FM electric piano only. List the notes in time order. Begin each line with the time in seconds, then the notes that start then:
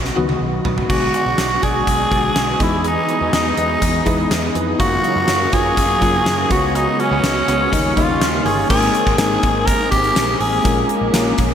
Already playing: D#3 F#3 B3 F#4
0.16 D#3 F#3 B3 F#4
0.89 D3 G#3 B3 F#4
2.11 D3 G#3 B3 F#4
2.60 E3 G#3 B3 D#4
4.05 G#3 B3 D#4 E4
4.78 C#3 F#3 A#3 F5
6.01 C#3 F#3 A#3 F4
6.50 C#3 G#3 B3 F#4
7.72 C#3 G3 A#3 D#4
7.96 C#3 G3 A#3 D#4
8.69 G#3 A#3 C4 D#4 A#4
9.18 G#3 A#3 C4 D#4 A#4
10.64 G#3 A#3 C#4 F4 A#4
11.13 G#3 A#3 C#4 F4 A#4